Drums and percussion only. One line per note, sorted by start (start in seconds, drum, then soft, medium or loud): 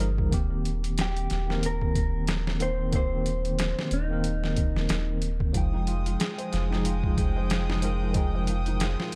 0.18 kick medium
0.32 kick loud
0.32 closed hi-hat medium
0.65 closed hi-hat medium
0.84 closed hi-hat soft
0.98 snare loud
0.98 closed hi-hat medium
1.17 closed hi-hat soft
1.30 snare soft
1.30 closed hi-hat medium
1.50 snare soft
1.63 closed hi-hat medium
1.82 kick medium
1.95 kick medium
1.95 closed hi-hat medium
2.27 snare loud
2.27 closed hi-hat medium
2.47 snare medium
2.60 closed hi-hat medium
2.93 kick loud
2.93 closed hi-hat medium
3.26 closed hi-hat medium
3.45 closed hi-hat soft
3.59 snare loud
3.59 closed hi-hat medium
3.79 snare medium
3.91 closed hi-hat medium
4.24 closed hi-hat medium
4.44 snare soft
4.56 kick medium
4.56 closed hi-hat medium
4.77 snare soft
4.89 snare loud
4.89 closed hi-hat medium
5.22 closed hi-hat medium
5.40 kick medium
5.54 kick loud
5.54 closed hi-hat medium
5.87 closed hi-hat medium
6.06 closed hi-hat soft
6.20 snare loud
6.20 closed hi-hat medium
6.39 closed hi-hat soft
6.53 snare soft
6.53 closed hi-hat medium
6.73 snare soft
6.85 closed hi-hat medium
7.04 kick medium
7.17 kick loud
7.17 closed hi-hat medium
7.50 snare loud
7.50 closed hi-hat medium
7.70 snare medium
7.82 closed hi-hat medium
8.14 kick loud
8.14 closed hi-hat medium
8.47 closed hi-hat medium
8.66 closed hi-hat soft
8.80 snare loud
8.80 closed hi-hat medium
9.00 snare medium